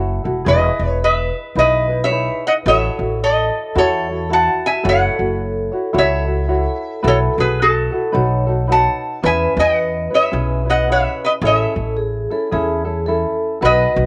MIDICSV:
0, 0, Header, 1, 5, 480
1, 0, Start_track
1, 0, Key_signature, 4, "major"
1, 0, Tempo, 548446
1, 402, Time_signature, 4, 2, 24, 8
1, 12306, End_track
2, 0, Start_track
2, 0, Title_t, "Resonator guitar played with a steel bar"
2, 0, Program_c, 0, 25
2, 421, Note_on_c, 0, 75, 89
2, 427, Note_on_c, 0, 71, 70
2, 762, Note_off_c, 0, 75, 0
2, 762, Note_on_c, 0, 73, 89
2, 859, Note_off_c, 0, 73, 0
2, 862, Note_off_c, 0, 71, 0
2, 911, Note_on_c, 0, 76, 77
2, 913, Note_on_c, 0, 71, 66
2, 1345, Note_off_c, 0, 71, 0
2, 1385, Note_off_c, 0, 76, 0
2, 1389, Note_on_c, 0, 75, 93
2, 1400, Note_on_c, 0, 71, 76
2, 1742, Note_off_c, 0, 71, 0
2, 1774, Note_off_c, 0, 75, 0
2, 1785, Note_on_c, 0, 76, 99
2, 1794, Note_on_c, 0, 73, 78
2, 2133, Note_off_c, 0, 73, 0
2, 2158, Note_off_c, 0, 76, 0
2, 2161, Note_on_c, 0, 78, 93
2, 2169, Note_on_c, 0, 75, 70
2, 2208, Note_off_c, 0, 78, 0
2, 2215, Note_off_c, 0, 75, 0
2, 2345, Note_on_c, 0, 76, 98
2, 2355, Note_on_c, 0, 73, 75
2, 2786, Note_off_c, 0, 73, 0
2, 2828, Note_off_c, 0, 76, 0
2, 2833, Note_on_c, 0, 75, 94
2, 2834, Note_on_c, 0, 69, 70
2, 3265, Note_off_c, 0, 69, 0
2, 3310, Note_on_c, 0, 69, 72
2, 3311, Note_off_c, 0, 75, 0
2, 3312, Note_on_c, 0, 73, 92
2, 3743, Note_off_c, 0, 69, 0
2, 3789, Note_off_c, 0, 73, 0
2, 3791, Note_on_c, 0, 81, 95
2, 3792, Note_on_c, 0, 78, 74
2, 4051, Note_off_c, 0, 78, 0
2, 4076, Note_off_c, 0, 81, 0
2, 4079, Note_on_c, 0, 80, 98
2, 4086, Note_on_c, 0, 76, 79
2, 4245, Note_off_c, 0, 76, 0
2, 4258, Note_off_c, 0, 80, 0
2, 4278, Note_on_c, 0, 73, 73
2, 4279, Note_on_c, 0, 78, 101
2, 5184, Note_off_c, 0, 73, 0
2, 5235, Note_off_c, 0, 78, 0
2, 5236, Note_on_c, 0, 73, 74
2, 5239, Note_on_c, 0, 76, 95
2, 6143, Note_off_c, 0, 73, 0
2, 6192, Note_on_c, 0, 69, 70
2, 6194, Note_on_c, 0, 73, 96
2, 6206, Note_off_c, 0, 76, 0
2, 6267, Note_off_c, 0, 69, 0
2, 6268, Note_off_c, 0, 73, 0
2, 6477, Note_on_c, 0, 68, 59
2, 6480, Note_on_c, 0, 71, 86
2, 6639, Note_off_c, 0, 68, 0
2, 6657, Note_off_c, 0, 71, 0
2, 6669, Note_on_c, 0, 66, 65
2, 6673, Note_on_c, 0, 69, 72
2, 7579, Note_off_c, 0, 66, 0
2, 7580, Note_off_c, 0, 69, 0
2, 7631, Note_on_c, 0, 78, 72
2, 7632, Note_on_c, 0, 81, 93
2, 8063, Note_off_c, 0, 78, 0
2, 8099, Note_on_c, 0, 76, 71
2, 8103, Note_off_c, 0, 81, 0
2, 8107, Note_on_c, 0, 80, 96
2, 8362, Note_off_c, 0, 76, 0
2, 8395, Note_off_c, 0, 80, 0
2, 8396, Note_on_c, 0, 75, 74
2, 8403, Note_on_c, 0, 78, 92
2, 8831, Note_off_c, 0, 75, 0
2, 8877, Note_on_c, 0, 73, 65
2, 8880, Note_off_c, 0, 78, 0
2, 8884, Note_on_c, 0, 76, 86
2, 9312, Note_off_c, 0, 73, 0
2, 9361, Note_on_c, 0, 75, 71
2, 9362, Note_off_c, 0, 76, 0
2, 9368, Note_on_c, 0, 78, 94
2, 9521, Note_off_c, 0, 75, 0
2, 9541, Note_off_c, 0, 78, 0
2, 9554, Note_on_c, 0, 73, 67
2, 9559, Note_on_c, 0, 76, 88
2, 9811, Note_off_c, 0, 73, 0
2, 9840, Note_off_c, 0, 76, 0
2, 9842, Note_on_c, 0, 71, 64
2, 9855, Note_on_c, 0, 75, 86
2, 9888, Note_off_c, 0, 71, 0
2, 9900, Note_off_c, 0, 75, 0
2, 10023, Note_on_c, 0, 73, 62
2, 10035, Note_on_c, 0, 76, 82
2, 10458, Note_off_c, 0, 73, 0
2, 10464, Note_off_c, 0, 76, 0
2, 11945, Note_on_c, 0, 71, 78
2, 11950, Note_on_c, 0, 75, 99
2, 12306, Note_off_c, 0, 71, 0
2, 12306, Note_off_c, 0, 75, 0
2, 12306, End_track
3, 0, Start_track
3, 0, Title_t, "Vibraphone"
3, 0, Program_c, 1, 11
3, 411, Note_on_c, 1, 71, 90
3, 2327, Note_on_c, 1, 69, 80
3, 2384, Note_off_c, 1, 71, 0
3, 3729, Note_off_c, 1, 69, 0
3, 3768, Note_on_c, 1, 66, 81
3, 4240, Note_on_c, 1, 69, 91
3, 4258, Note_off_c, 1, 66, 0
3, 6150, Note_off_c, 1, 69, 0
3, 6160, Note_on_c, 1, 69, 92
3, 7119, Note_on_c, 1, 73, 86
3, 7148, Note_off_c, 1, 69, 0
3, 7857, Note_off_c, 1, 73, 0
3, 8082, Note_on_c, 1, 71, 103
3, 9992, Note_on_c, 1, 69, 87
3, 10057, Note_off_c, 1, 71, 0
3, 10474, Note_on_c, 1, 68, 90
3, 10489, Note_off_c, 1, 69, 0
3, 10749, Note_off_c, 1, 68, 0
3, 10779, Note_on_c, 1, 69, 89
3, 10904, Note_off_c, 1, 69, 0
3, 10916, Note_on_c, 1, 69, 65
3, 10960, Note_off_c, 1, 69, 0
3, 10962, Note_on_c, 1, 68, 81
3, 11433, Note_on_c, 1, 69, 91
3, 11454, Note_off_c, 1, 68, 0
3, 11882, Note_off_c, 1, 69, 0
3, 11922, Note_on_c, 1, 71, 97
3, 12306, Note_off_c, 1, 71, 0
3, 12306, End_track
4, 0, Start_track
4, 0, Title_t, "Ukulele"
4, 0, Program_c, 2, 24
4, 0, Note_on_c, 2, 64, 54
4, 0, Note_on_c, 2, 66, 65
4, 0, Note_on_c, 2, 69, 70
4, 0, Note_on_c, 2, 73, 65
4, 201, Note_off_c, 2, 69, 0
4, 212, Note_off_c, 2, 64, 0
4, 212, Note_on_c, 2, 69, 53
4, 215, Note_off_c, 2, 73, 0
4, 217, Note_off_c, 2, 66, 0
4, 222, Note_on_c, 2, 64, 51
4, 228, Note_on_c, 2, 66, 46
4, 388, Note_off_c, 2, 66, 0
4, 392, Note_on_c, 2, 68, 78
4, 400, Note_off_c, 2, 69, 0
4, 402, Note_off_c, 2, 64, 0
4, 412, Note_on_c, 2, 64, 81
4, 419, Note_on_c, 2, 71, 81
4, 1358, Note_off_c, 2, 68, 0
4, 1363, Note_off_c, 2, 71, 0
4, 1367, Note_on_c, 2, 68, 65
4, 1368, Note_off_c, 2, 64, 0
4, 1368, Note_on_c, 2, 63, 76
4, 1371, Note_on_c, 2, 64, 80
4, 1375, Note_on_c, 2, 71, 78
4, 1644, Note_off_c, 2, 71, 0
4, 1655, Note_on_c, 2, 71, 50
4, 1656, Note_off_c, 2, 64, 0
4, 1659, Note_off_c, 2, 63, 0
4, 1659, Note_off_c, 2, 68, 0
4, 1666, Note_on_c, 2, 64, 47
4, 1677, Note_on_c, 2, 63, 39
4, 1832, Note_off_c, 2, 63, 0
4, 1837, Note_on_c, 2, 68, 52
4, 1840, Note_off_c, 2, 64, 0
4, 1842, Note_off_c, 2, 71, 0
4, 1843, Note_on_c, 2, 63, 57
4, 1851, Note_on_c, 2, 64, 61
4, 1858, Note_on_c, 2, 71, 66
4, 2320, Note_off_c, 2, 68, 0
4, 2322, Note_off_c, 2, 71, 0
4, 2323, Note_off_c, 2, 63, 0
4, 2325, Note_off_c, 2, 64, 0
4, 2325, Note_on_c, 2, 69, 80
4, 2328, Note_on_c, 2, 64, 73
4, 2334, Note_on_c, 2, 66, 84
4, 2334, Note_on_c, 2, 73, 80
4, 2599, Note_off_c, 2, 73, 0
4, 2609, Note_on_c, 2, 73, 40
4, 2611, Note_off_c, 2, 66, 0
4, 2618, Note_off_c, 2, 69, 0
4, 2619, Note_off_c, 2, 64, 0
4, 2621, Note_on_c, 2, 66, 35
4, 2631, Note_on_c, 2, 64, 37
4, 3282, Note_off_c, 2, 64, 0
4, 3283, Note_on_c, 2, 69, 81
4, 3285, Note_on_c, 2, 64, 80
4, 3287, Note_off_c, 2, 66, 0
4, 3290, Note_on_c, 2, 66, 85
4, 3292, Note_off_c, 2, 73, 0
4, 3295, Note_on_c, 2, 73, 84
4, 3567, Note_off_c, 2, 73, 0
4, 3576, Note_off_c, 2, 69, 0
4, 3577, Note_off_c, 2, 64, 0
4, 3578, Note_on_c, 2, 73, 51
4, 3580, Note_off_c, 2, 66, 0
4, 3589, Note_on_c, 2, 66, 42
4, 3596, Note_on_c, 2, 64, 44
4, 3756, Note_on_c, 2, 69, 57
4, 3757, Note_off_c, 2, 66, 0
4, 3758, Note_off_c, 2, 64, 0
4, 3763, Note_off_c, 2, 73, 0
4, 3767, Note_on_c, 2, 66, 68
4, 3768, Note_on_c, 2, 64, 55
4, 3777, Note_on_c, 2, 73, 59
4, 4227, Note_off_c, 2, 69, 0
4, 4230, Note_off_c, 2, 64, 0
4, 4230, Note_on_c, 2, 69, 82
4, 4233, Note_on_c, 2, 64, 72
4, 4235, Note_off_c, 2, 66, 0
4, 4239, Note_off_c, 2, 73, 0
4, 4239, Note_on_c, 2, 66, 94
4, 4242, Note_on_c, 2, 73, 94
4, 4518, Note_off_c, 2, 73, 0
4, 4529, Note_off_c, 2, 66, 0
4, 4529, Note_off_c, 2, 69, 0
4, 4529, Note_on_c, 2, 73, 39
4, 4531, Note_off_c, 2, 64, 0
4, 4540, Note_on_c, 2, 66, 41
4, 4550, Note_on_c, 2, 64, 39
4, 4994, Note_off_c, 2, 73, 0
4, 5004, Note_on_c, 2, 73, 51
4, 5013, Note_off_c, 2, 66, 0
4, 5016, Note_on_c, 2, 66, 51
4, 5024, Note_off_c, 2, 64, 0
4, 5028, Note_on_c, 2, 64, 45
4, 5181, Note_off_c, 2, 64, 0
4, 5187, Note_off_c, 2, 66, 0
4, 5190, Note_off_c, 2, 73, 0
4, 5190, Note_on_c, 2, 69, 82
4, 5192, Note_on_c, 2, 64, 80
4, 5198, Note_on_c, 2, 66, 72
4, 5200, Note_on_c, 2, 73, 86
4, 5466, Note_off_c, 2, 73, 0
4, 5476, Note_off_c, 2, 66, 0
4, 5476, Note_on_c, 2, 73, 51
4, 5485, Note_off_c, 2, 64, 0
4, 5486, Note_on_c, 2, 66, 43
4, 5489, Note_off_c, 2, 69, 0
4, 5495, Note_on_c, 2, 64, 38
4, 5662, Note_on_c, 2, 69, 57
4, 5665, Note_off_c, 2, 64, 0
4, 5668, Note_off_c, 2, 66, 0
4, 5671, Note_off_c, 2, 73, 0
4, 5675, Note_on_c, 2, 64, 66
4, 5678, Note_on_c, 2, 66, 64
4, 5680, Note_on_c, 2, 73, 67
4, 6143, Note_off_c, 2, 64, 0
4, 6147, Note_off_c, 2, 73, 0
4, 6150, Note_off_c, 2, 66, 0
4, 6150, Note_on_c, 2, 71, 71
4, 6154, Note_off_c, 2, 69, 0
4, 6154, Note_on_c, 2, 64, 79
4, 6154, Note_on_c, 2, 66, 88
4, 6158, Note_on_c, 2, 69, 87
4, 6438, Note_off_c, 2, 69, 0
4, 6448, Note_off_c, 2, 66, 0
4, 6448, Note_off_c, 2, 71, 0
4, 6448, Note_on_c, 2, 69, 46
4, 6450, Note_off_c, 2, 64, 0
4, 6458, Note_on_c, 2, 66, 42
4, 6469, Note_on_c, 2, 64, 38
4, 6913, Note_off_c, 2, 69, 0
4, 6923, Note_off_c, 2, 66, 0
4, 6923, Note_on_c, 2, 69, 46
4, 6933, Note_on_c, 2, 66, 43
4, 6934, Note_off_c, 2, 64, 0
4, 6944, Note_on_c, 2, 64, 39
4, 7108, Note_on_c, 2, 71, 74
4, 7109, Note_off_c, 2, 66, 0
4, 7112, Note_off_c, 2, 69, 0
4, 7112, Note_on_c, 2, 63, 73
4, 7120, Note_off_c, 2, 64, 0
4, 7123, Note_on_c, 2, 66, 74
4, 7123, Note_on_c, 2, 69, 76
4, 7399, Note_off_c, 2, 69, 0
4, 7407, Note_off_c, 2, 71, 0
4, 7409, Note_off_c, 2, 63, 0
4, 7409, Note_off_c, 2, 66, 0
4, 7409, Note_on_c, 2, 69, 61
4, 7420, Note_on_c, 2, 66, 54
4, 7426, Note_on_c, 2, 63, 45
4, 7587, Note_off_c, 2, 63, 0
4, 7593, Note_on_c, 2, 71, 54
4, 7596, Note_off_c, 2, 66, 0
4, 7597, Note_off_c, 2, 69, 0
4, 7598, Note_on_c, 2, 63, 59
4, 7607, Note_on_c, 2, 66, 61
4, 7611, Note_on_c, 2, 69, 64
4, 8071, Note_off_c, 2, 71, 0
4, 8074, Note_on_c, 2, 68, 81
4, 8078, Note_off_c, 2, 63, 0
4, 8081, Note_on_c, 2, 61, 75
4, 8083, Note_off_c, 2, 66, 0
4, 8085, Note_off_c, 2, 69, 0
4, 8088, Note_on_c, 2, 64, 81
4, 8088, Note_on_c, 2, 71, 88
4, 8356, Note_off_c, 2, 71, 0
4, 8366, Note_off_c, 2, 64, 0
4, 8367, Note_on_c, 2, 71, 45
4, 8370, Note_off_c, 2, 68, 0
4, 8373, Note_off_c, 2, 61, 0
4, 8376, Note_on_c, 2, 64, 39
4, 8387, Note_on_c, 2, 61, 37
4, 8832, Note_off_c, 2, 71, 0
4, 8842, Note_on_c, 2, 71, 48
4, 8852, Note_off_c, 2, 64, 0
4, 8855, Note_on_c, 2, 64, 44
4, 8856, Note_off_c, 2, 61, 0
4, 8859, Note_on_c, 2, 61, 36
4, 9019, Note_off_c, 2, 61, 0
4, 9022, Note_off_c, 2, 64, 0
4, 9029, Note_on_c, 2, 61, 77
4, 9029, Note_on_c, 2, 68, 78
4, 9031, Note_off_c, 2, 71, 0
4, 9033, Note_on_c, 2, 64, 68
4, 9041, Note_on_c, 2, 71, 85
4, 9310, Note_off_c, 2, 71, 0
4, 9318, Note_off_c, 2, 64, 0
4, 9321, Note_off_c, 2, 61, 0
4, 9321, Note_on_c, 2, 71, 47
4, 9328, Note_off_c, 2, 68, 0
4, 9329, Note_on_c, 2, 64, 47
4, 9331, Note_on_c, 2, 61, 40
4, 9510, Note_off_c, 2, 61, 0
4, 9512, Note_off_c, 2, 71, 0
4, 9514, Note_on_c, 2, 68, 54
4, 9516, Note_off_c, 2, 64, 0
4, 9521, Note_on_c, 2, 61, 55
4, 9526, Note_on_c, 2, 64, 59
4, 9533, Note_on_c, 2, 71, 63
4, 9998, Note_off_c, 2, 68, 0
4, 9999, Note_off_c, 2, 61, 0
4, 10001, Note_on_c, 2, 68, 79
4, 10002, Note_off_c, 2, 64, 0
4, 10003, Note_on_c, 2, 61, 81
4, 10005, Note_off_c, 2, 71, 0
4, 10006, Note_on_c, 2, 64, 89
4, 10008, Note_on_c, 2, 69, 97
4, 10278, Note_off_c, 2, 69, 0
4, 10288, Note_on_c, 2, 69, 44
4, 10289, Note_off_c, 2, 64, 0
4, 10293, Note_off_c, 2, 68, 0
4, 10294, Note_off_c, 2, 61, 0
4, 10299, Note_on_c, 2, 64, 39
4, 10308, Note_on_c, 2, 61, 36
4, 10768, Note_off_c, 2, 69, 0
4, 10768, Note_on_c, 2, 69, 55
4, 10769, Note_off_c, 2, 64, 0
4, 10773, Note_off_c, 2, 61, 0
4, 10779, Note_on_c, 2, 64, 52
4, 10784, Note_on_c, 2, 61, 43
4, 10947, Note_off_c, 2, 61, 0
4, 10949, Note_off_c, 2, 69, 0
4, 10953, Note_off_c, 2, 64, 0
4, 10953, Note_on_c, 2, 68, 80
4, 10957, Note_on_c, 2, 61, 92
4, 10964, Note_on_c, 2, 64, 85
4, 10968, Note_on_c, 2, 69, 96
4, 11233, Note_off_c, 2, 69, 0
4, 11243, Note_off_c, 2, 64, 0
4, 11243, Note_on_c, 2, 69, 55
4, 11249, Note_off_c, 2, 68, 0
4, 11251, Note_off_c, 2, 61, 0
4, 11253, Note_on_c, 2, 64, 53
4, 11262, Note_on_c, 2, 61, 49
4, 11433, Note_off_c, 2, 61, 0
4, 11434, Note_off_c, 2, 69, 0
4, 11439, Note_off_c, 2, 64, 0
4, 11443, Note_on_c, 2, 61, 65
4, 11448, Note_on_c, 2, 64, 73
4, 11449, Note_on_c, 2, 69, 72
4, 11908, Note_off_c, 2, 69, 0
4, 11912, Note_on_c, 2, 69, 80
4, 11916, Note_off_c, 2, 64, 0
4, 11917, Note_off_c, 2, 61, 0
4, 11920, Note_on_c, 2, 63, 81
4, 11920, Note_on_c, 2, 66, 94
4, 11927, Note_on_c, 2, 71, 90
4, 12190, Note_off_c, 2, 71, 0
4, 12197, Note_off_c, 2, 69, 0
4, 12200, Note_on_c, 2, 71, 43
4, 12201, Note_off_c, 2, 66, 0
4, 12206, Note_off_c, 2, 63, 0
4, 12211, Note_on_c, 2, 66, 40
4, 12217, Note_on_c, 2, 63, 38
4, 12306, Note_off_c, 2, 63, 0
4, 12306, Note_off_c, 2, 66, 0
4, 12306, Note_off_c, 2, 71, 0
4, 12306, End_track
5, 0, Start_track
5, 0, Title_t, "Upright bass"
5, 0, Program_c, 3, 32
5, 0, Note_on_c, 3, 30, 82
5, 193, Note_off_c, 3, 30, 0
5, 220, Note_on_c, 3, 28, 71
5, 386, Note_off_c, 3, 28, 0
5, 405, Note_on_c, 3, 28, 101
5, 595, Note_off_c, 3, 28, 0
5, 695, Note_on_c, 3, 28, 89
5, 1129, Note_off_c, 3, 28, 0
5, 1361, Note_on_c, 3, 35, 81
5, 1985, Note_off_c, 3, 35, 0
5, 2325, Note_on_c, 3, 33, 101
5, 2515, Note_off_c, 3, 33, 0
5, 2617, Note_on_c, 3, 33, 80
5, 3049, Note_off_c, 3, 33, 0
5, 3286, Note_on_c, 3, 40, 89
5, 3908, Note_off_c, 3, 40, 0
5, 4244, Note_on_c, 3, 30, 107
5, 4434, Note_off_c, 3, 30, 0
5, 4543, Note_on_c, 3, 30, 77
5, 4973, Note_off_c, 3, 30, 0
5, 5202, Note_on_c, 3, 37, 85
5, 5825, Note_off_c, 3, 37, 0
5, 6164, Note_on_c, 3, 35, 100
5, 6353, Note_off_c, 3, 35, 0
5, 6459, Note_on_c, 3, 35, 86
5, 6890, Note_off_c, 3, 35, 0
5, 7129, Note_on_c, 3, 35, 87
5, 7749, Note_off_c, 3, 35, 0
5, 8083, Note_on_c, 3, 40, 104
5, 8272, Note_off_c, 3, 40, 0
5, 8373, Note_on_c, 3, 40, 89
5, 8805, Note_off_c, 3, 40, 0
5, 9041, Note_on_c, 3, 35, 91
5, 9664, Note_off_c, 3, 35, 0
5, 9990, Note_on_c, 3, 33, 99
5, 10184, Note_off_c, 3, 33, 0
5, 10292, Note_on_c, 3, 33, 77
5, 10725, Note_off_c, 3, 33, 0
5, 10961, Note_on_c, 3, 40, 84
5, 11584, Note_off_c, 3, 40, 0
5, 11924, Note_on_c, 3, 35, 95
5, 12113, Note_off_c, 3, 35, 0
5, 12221, Note_on_c, 3, 35, 92
5, 12306, Note_off_c, 3, 35, 0
5, 12306, End_track
0, 0, End_of_file